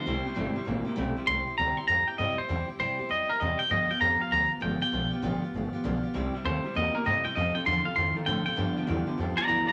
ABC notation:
X:1
M:4/4
L:1/8
Q:"Swing" 1/4=197
K:C
V:1 name="Clean electric guitar"
c4- c z3 | c'2 _b c' b g _e c- | c z c2 _e _B e g | _e g _b f b z g g- |
g3 z4 z | z2 c2 _e _B e g | _e g c' f c' z g g- | g3 z2 [d_b] [db] [db] |]
V:2 name="Steel-string acoustic guitar"
[C,G,CEG] [CEG] [C,G,CEG] [CEG] [G,CEG] [CEG] [C,G,CEG] [CEG] | [C,G,CEG] [CEG] [C,G,CEG] [CEG] [G,CEG] [CEG] [C,G,CEG] [EG] | [C,G,CEG] [CEG] [C,G,CEG] [CEG] [G,CEG] [CEG] [C,G,CEG] [CEG] | [G,,D,F,B,FG] [F,B,FG] [G,,D,F,B,FG] [F,B,FG] [F,B,FG] [F,B,FG] [G,,D,F,B,FG] [F,B,FG] |
[G,,D,F,B,FG] [F,B,FG] [G,,D,F,B,FG] [F,B,FG] [F,B,FG] [F,B,FG] [G,,D,F,B,FG] [F,B,FG] | [C,G,CEG] [CEG] [C,G,CEG] [CEG] [G,CEG] [CEG] [C,G,CEG] [CEG] | [F,CFA] [CFA] [F,CFA] [CFA] [F,CFA] [CFA] [F,CFA] [CFA] | [G,,D,F,B,FG] [F,B,FG] [G,,D,F,B,FG] [F,B,FG] [F,B,FG] [F,B,FG] [G,,D,F,B,FG] [F,B,FG] |]
V:3 name="Clean electric guitar" clef=bass
[C,G,] [C,G,] [C,A,] [C,G,] [C,_B,] [C,B,] [C,A,] [C,G,] | z8 | z8 | z8 |
z8 | [C,G,] [C,G,] [C,A,] [C,G,] [C,_B,] [C,B,] [C,A,] [C,G,] | [F,,C,] [F,,C,] [F,,D,] [F,,C,] [F,,_E,] [F,,E,] [F,,D,] [F,,C,] | [G,,D,] [G,,D,] [G,,E,] [G,,D,] [G,,F,] [G,,F,] [G,,E,] [G,,D,] |]
V:4 name="Upright bass" clef=bass
C,, z G,,, z A,,, z B,,, z | C,, z D,, z F,, z G,, z | E,, z G,, z F,, z E,, z | G,, z F,, z D,, z G,,, z |
B,,, z A,,, z G,,, z B,,, z | C,, z _E,, z =E,, z G,, z | F,, z E,, z F,, z A,, z | G,, z E,, z F,, z D,, z |]